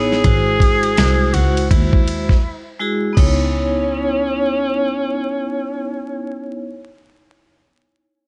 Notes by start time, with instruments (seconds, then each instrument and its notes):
Already playing: double bass A1, vibraphone B3 D#4 E4 C#5, alto saxophone G#4
0.12 snare
0.24 double bass G#1, vibraphone G#3 E4 F#4 C5, kick, ride
0.60 kick, ride
0.83 ride
0.96 double bass C2, vibraphone G#3 E4 F#4 C5, snare, hi-hat pedal, ride
1.34 double bass C#2, alto saxophone F#4, ride
1.57 ride
1.70 double bass D#2, alto saxophone E4, kick, ride
1.93 kick
2.08 ride
2.29 kick, snare
2.79 vibraphone G#3 E4 F#4 G#4
3.13 vibraphone B3 D#4
3.17 double bass C#2, alto saxophone C#4, vibraphone E4 C#5, kick, crash